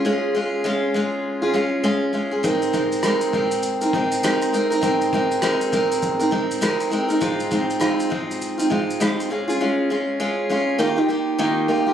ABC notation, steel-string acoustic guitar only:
X:1
M:4/4
L:1/16
Q:"Swing 16ths" 1/4=100
K:Ab
V:1 name="Steel-string acoustic guitar"
[A,DFA]2 [A,DFA]2 [A,DFA]2 [A,DFA]3 [DFA] [A,DFA]2 [A,DFA]2 [A,DFA] [DFA] | [A,CEB]2 [A,CEB]2 [A,CEB]2 [A,CEB]3 [CEB] [A,CEB]2 [A,CEB]2 [A,CEB] [CEB] | [A,CEB]2 [A,CEB]2 [A,CEB]2 [A,CEB]3 [CEB] [A,CEB]2 [A,CEB]2 [A,CEB] [CEB] | [A,CEF]2 [A,CEF]2 [A,CEF]2 [A,CEF]3 [CEF] [A,CEF]2 [A,CEF]2 [A,DFA] [DFA] |
[A,DFA]2 [A,DFA]2 [A,DFA]2 [A,DFA]2 [E,B,EFG] [EFG] [B,EFG]2 [E,B,EFG]2 [B,EFG] [EFG] |]